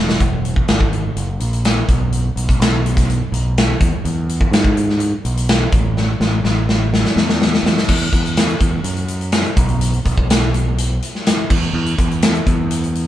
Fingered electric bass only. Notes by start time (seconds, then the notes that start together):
Already playing: E1
0.20 E1
0.69 G#1
1.17 F#1
1.40 A#1
1.88 B1
2.36 B1
2.60 B1
3.32 B1
3.80 E2
4.05 E2
4.51 G#2
5.25 B1
5.72 A1
6.20 A1
6.44 A1
7.16 E2
7.63 E2
7.88 E2
8.13 E2
8.60 E2
8.84 F#2
9.57 B1
10.05 B1
10.17 B1
11.50 E2
11.73 E2
11.99 E2
12.47 E2